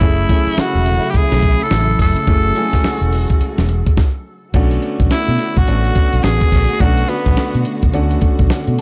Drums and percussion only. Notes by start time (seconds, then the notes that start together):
0.01 kick, closed hi-hat, shaker
0.19 shaker
0.29 kick, closed hi-hat, shaker
0.47 closed hi-hat, shaker
0.58 snare, closed hi-hat, shaker
0.76 shaker
0.86 closed hi-hat
1.03 closed hi-hat, shaker
1.14 kick, closed hi-hat, shaker
1.32 snare, shaker
1.43 kick, closed hi-hat
1.60 closed hi-hat, shaker
1.71 snare, closed hi-hat, shaker
1.90 shaker
1.99 kick, open hi-hat, shaker
2.16 closed hi-hat, shaker
2.27 kick, closed hi-hat, shaker
2.45 shaker
2.56 closed hi-hat, shaker
2.73 kick, snare, closed hi-hat, shaker
2.84 snare, closed hi-hat, shaker
3.01 shaker
3.13 open hi-hat
3.30 kick, closed hi-hat, shaker
3.41 closed hi-hat, shaker
3.58 snare, shaker
3.69 closed hi-hat
3.86 kick, closed hi-hat, shaker
3.97 kick, snare
4.54 kick, closed hi-hat, crash, shaker
4.71 closed hi-hat, shaker
4.82 closed hi-hat
5.00 kick, closed hi-hat, shaker
5.11 snare, closed hi-hat, shaker
5.28 closed hi-hat, shaker
5.39 closed hi-hat
5.56 kick, closed hi-hat, shaker
5.67 closed hi-hat, shaker
5.84 closed hi-hat, shaker
5.96 kick, closed hi-hat, shaker
6.13 closed hi-hat, shaker
6.24 snare, closed hi-hat, shaker
6.41 kick, closed hi-hat, shaker
6.52 kick, open hi-hat, shaker
6.69 closed hi-hat, shaker
6.80 kick, closed hi-hat, shaker
6.98 closed hi-hat, shaker
7.09 closed hi-hat
7.26 kick, closed hi-hat, shaker
7.37 snare, closed hi-hat, shaker
7.55 closed hi-hat, shaker
7.65 closed hi-hat
7.82 kick, closed hi-hat, shaker
7.94 closed hi-hat, shaker
8.11 closed hi-hat, shaker
8.21 kick, closed hi-hat, shaker
8.39 kick, closed hi-hat, shaker
8.50 snare, closed hi-hat, shaker
8.67 closed hi-hat, shaker